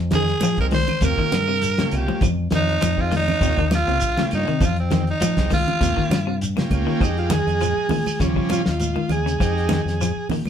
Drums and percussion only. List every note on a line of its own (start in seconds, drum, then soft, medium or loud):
0.11 snare medium
0.11 closed hi-hat medium
0.11 low conga loud
0.11 shekere soft
0.27 snare soft
0.27 closed hi-hat soft
0.41 closed hi-hat medium
0.41 high conga medium
0.41 claves medium
0.41 shekere medium
0.57 kick medium
0.57 closed hi-hat soft
0.71 open hi-hat medium
0.71 high conga medium
0.71 shekere soft
0.88 closed hi-hat soft
0.88 low conga medium
0.88 claves medium
1.01 kick medium
1.01 closed hi-hat medium
1.01 high conga medium
1.01 shekere medium
1.18 kick medium
1.32 snare medium
1.32 closed hi-hat medium
1.32 high conga medium
1.32 claves medium
1.32 shekere soft
1.61 snare soft
1.61 closed hi-hat medium
1.61 shekere medium
1.78 snare medium
1.78 closed hi-hat soft
1.78 high conga medium
1.91 closed hi-hat medium
1.91 claves medium
1.91 shekere soft
2.08 high conga medium
2.21 kick medium
2.21 closed hi-hat medium
2.21 low conga medium
2.21 claves medium
2.21 shekere medium
2.50 snare medium
2.50 closed hi-hat soft
2.50 low conga medium
2.50 shekere soft
2.68 snare soft
2.81 closed hi-hat medium
2.81 high conga medium
2.81 claves medium
2.81 shekere medium
2.97 kick medium
3.11 open hi-hat medium
3.11 high conga medium
3.11 shekere soft
3.28 low conga medium
3.28 claves medium
3.41 kick medium
3.41 closed hi-hat medium
3.41 shekere medium
3.57 kick medium
3.57 closed hi-hat soft
3.71 snare medium
3.71 closed hi-hat medium
3.71 high conga medium
3.71 claves medium
3.71 shekere soft
3.88 closed hi-hat soft
4.01 closed hi-hat medium
4.01 shekere medium
4.17 snare medium
4.17 closed hi-hat soft
4.17 high conga medium
4.31 closed hi-hat medium
4.31 claves medium
4.31 shekere soft
4.47 closed hi-hat soft
4.60 kick loud
4.60 closed hi-hat medium
4.60 low conga medium
4.60 claves medium
4.60 shekere medium
4.76 closed hi-hat soft
4.90 snare medium
4.90 closed hi-hat soft
4.90 low conga loud
4.90 shekere soft
5.07 closed hi-hat soft
5.20 closed hi-hat medium
5.20 high conga loud
5.20 claves medium
5.20 shekere loud
5.37 kick medium
5.37 snare medium
5.37 closed hi-hat soft
5.50 kick medium
5.50 snare soft
5.50 open hi-hat medium
5.50 high conga medium
5.50 shekere soft
5.68 closed hi-hat soft
5.68 low conga medium
5.68 claves medium
5.81 kick medium
5.81 closed hi-hat medium
5.81 high conga medium
5.81 shekere medium
5.97 kick medium
6.11 snare medium
6.11 closed hi-hat medium
6.11 high conga medium
6.11 claves medium
6.11 shekere soft
6.41 closed hi-hat medium
6.41 shekere medium
6.57 snare medium
6.57 closed hi-hat soft
6.57 high conga medium
6.71 kick medium
6.71 closed hi-hat medium
6.71 high conga medium
6.71 claves medium
6.71 shekere soft
7.01 kick medium
7.01 closed hi-hat medium
7.01 high conga soft
7.01 claves medium
7.01 shekere medium
7.17 closed hi-hat soft
7.30 snare medium
7.30 closed hi-hat soft
7.30 high conga loud
7.30 low conga medium
7.47 closed hi-hat soft
7.47 shekere soft
7.60 closed hi-hat medium
7.60 high conga soft
7.60 claves medium
7.60 shekere medium
7.89 open hi-hat medium
7.89 high conga medium
7.89 low conga medium
7.89 shekere soft
8.06 high conga medium
8.06 claves medium
8.06 shekere medium
8.20 kick medium
8.20 closed hi-hat medium
8.20 shekere medium
8.36 kick medium
8.49 closed hi-hat soft
8.49 high conga medium
8.49 claves medium
8.49 shekere medium
8.66 snare medium
8.66 shekere soft
8.80 closed hi-hat medium
8.80 high conga medium
8.80 shekere medium
8.96 high conga medium
9.09 closed hi-hat soft
9.09 low conga medium
9.09 claves medium
9.09 shekere soft
9.27 closed hi-hat soft
9.27 shekere medium
9.40 kick medium
9.40 closed hi-hat medium
9.40 high conga soft
9.40 claves medium
9.40 shekere medium
9.58 closed hi-hat soft
9.69 snare medium
9.69 closed hi-hat soft
9.69 high conga loud
9.69 low conga medium
9.88 snare soft
9.88 closed hi-hat soft
9.88 shekere soft
10.00 snare soft
10.00 closed hi-hat medium
10.00 high conga soft
10.00 claves medium
10.00 shekere medium
10.30 open hi-hat medium
10.30 low conga medium
10.30 shekere soft
10.46 high conga medium